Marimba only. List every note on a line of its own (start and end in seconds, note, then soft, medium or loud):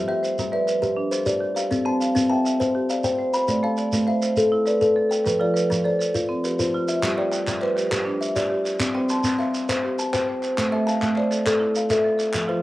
0.00 0.24 F4 medium
0.08 0.38 G3 medium
0.08 0.53 G4 medium
0.23 0.68 C5 medium
0.52 0.66 B4 medium
0.52 0.97 D5 medium
0.67 1.12 B4 medium
0.96 1.27 D4 medium
1.12 1.57 A4 medium
1.40 1.54 G4 medium
1.55 2.00 G4 medium
1.70 2.01 A4 medium
1.85 2.15 C4 medium
1.85 2.30 C5 medium
2.00 2.45 F5 medium
2.30 2.44 E5 medium
2.30 2.75 G5 medium
2.45 2.89 E5 medium
2.75 3.04 G4 medium
2.89 3.34 D5 medium
3.18 3.33 C5 medium
3.34 3.78 C5 medium
3.48 3.76 D5 medium
3.63 3.93 A3 medium
3.63 4.07 A4 medium
3.78 4.22 D5 medium
4.07 4.21 C5 medium
4.07 4.51 E5 medium
4.22 4.66 C5 medium
4.52 4.81 E4 medium
4.66 5.10 B4 medium
4.96 5.08 A4 medium
5.09 5.54 A4 medium
5.25 5.53 B4 medium
5.40 5.70 F3 medium
5.40 5.84 F4 medium
5.54 5.99 B4 medium
5.84 5.98 A4 medium
5.84 6.29 C5 medium
5.99 6.44 A4 medium
6.29 6.58 C4 medium
6.44 6.88 G4 medium
6.74 6.87 F4 medium
6.89 7.33 F4 medium
7.03 7.16 G4 medium
7.17 7.47 G3 medium
7.17 7.62 G4 medium
7.33 7.77 E5 medium
7.61 7.91 B4 medium
7.76 8.21 G4 medium
8.05 8.35 D4 medium
8.50 8.63 G4 medium
8.64 9.09 G4 medium
8.95 9.24 C4 medium
8.95 9.39 C5 medium
9.10 9.54 A5 medium
9.38 9.83 E5 medium
9.84 10.13 G4 medium
10.29 10.42 C5 medium
10.43 10.87 C5 medium
10.72 11.02 A3 medium
10.72 11.17 A4 medium
10.86 11.31 F5 medium
11.16 11.61 C5 medium
11.31 11.75 A4 medium
11.60 11.90 E4 medium
12.04 12.17 A4 medium
12.18 12.62 A4 medium
12.48 12.62 F3 medium
12.48 12.62 F4 medium